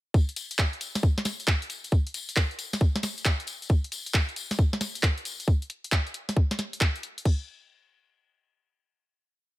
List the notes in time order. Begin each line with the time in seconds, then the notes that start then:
0.14 kick, tambourine
0.29 closed hi-hat
0.36 open hi-hat, tambourine
0.51 closed hi-hat, tambourine
0.59 kick, clap
0.73 closed hi-hat
0.81 open hi-hat, tambourine
0.95 snare, closed hi-hat, tambourine
1.03 kick
1.18 snare
1.25 snare, open hi-hat, tambourine
1.40 closed hi-hat, tambourine
1.48 kick, clap
1.62 closed hi-hat
1.70 open hi-hat, tambourine
1.84 closed hi-hat, tambourine
1.92 kick, tambourine
2.07 closed hi-hat
2.14 open hi-hat, tambourine
2.29 closed hi-hat, tambourine
2.36 kick, clap
2.51 closed hi-hat
2.59 open hi-hat, tambourine
2.73 snare, closed hi-hat, tambourine
2.81 kick, tambourine
2.96 snare, open hi-hat
3.03 snare, open hi-hat, tambourine
3.18 closed hi-hat, tambourine
3.25 kick, clap
3.40 closed hi-hat
3.47 open hi-hat, tambourine
3.62 closed hi-hat, tambourine
3.69 kick, tambourine
3.84 closed hi-hat
3.92 open hi-hat, tambourine
4.06 closed hi-hat, tambourine
4.14 kick, clap
4.29 closed hi-hat
4.36 open hi-hat, tambourine
4.51 snare, closed hi-hat, tambourine
4.59 kick
4.73 snare
4.81 snare, open hi-hat, tambourine
4.95 closed hi-hat, tambourine
5.03 kick, clap
5.18 closed hi-hat
5.25 open hi-hat, tambourine
5.40 closed hi-hat, tambourine
5.48 kick
5.62 closed hi-hat
5.70 open hi-hat
5.84 closed hi-hat
5.92 kick, clap
6.07 closed hi-hat
6.14 open hi-hat
6.29 snare, closed hi-hat
6.37 kick
6.51 snare, open hi-hat
6.59 snare, open hi-hat
6.73 closed hi-hat
6.81 kick, clap
6.96 closed hi-hat
7.03 open hi-hat
7.18 closed hi-hat
7.25 kick, crash